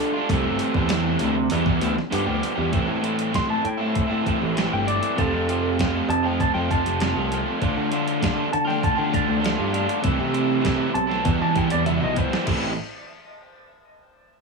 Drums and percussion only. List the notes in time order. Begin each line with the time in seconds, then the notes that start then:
0.29 kick, open hi-hat
0.59 open hi-hat
0.74 kick
0.89 snare, open hi-hat
1.19 open hi-hat
1.50 open hi-hat
1.66 kick
1.81 open hi-hat
1.98 snare
2.12 open hi-hat
2.43 open hi-hat
2.73 kick, closed hi-hat
3.04 closed hi-hat
3.19 closed hi-hat
3.34 kick, snare, closed hi-hat
3.65 closed hi-hat
3.95 kick, closed hi-hat
4.26 kick, closed hi-hat
4.57 snare, closed hi-hat
4.88 closed hi-hat
5.03 closed hi-hat
5.18 kick, closed hi-hat
5.49 closed hi-hat
5.79 kick, snare, closed hi-hat
6.10 closed hi-hat
6.40 kick, closed hi-hat
6.71 kick, closed hi-hat
6.86 closed hi-hat
7.00 snare, closed hi-hat
7.32 closed hi-hat
7.62 kick, closed hi-hat
7.92 closed hi-hat
8.08 closed hi-hat
8.22 kick, snare, closed hi-hat
8.53 closed hi-hat
8.70 snare
8.83 kick, closed hi-hat
9.14 kick, closed hi-hat
9.44 snare, closed hi-hat
9.74 closed hi-hat
9.89 closed hi-hat
10.04 kick, closed hi-hat
10.34 closed hi-hat
10.65 kick, snare, closed hi-hat
10.95 closed hi-hat
11.11 snare
11.25 kick, closed hi-hat
11.56 kick, closed hi-hat
11.70 closed hi-hat
11.86 closed hi-hat, high tom
12.16 kick, closed hi-hat
12.33 snare
12.47 kick, crash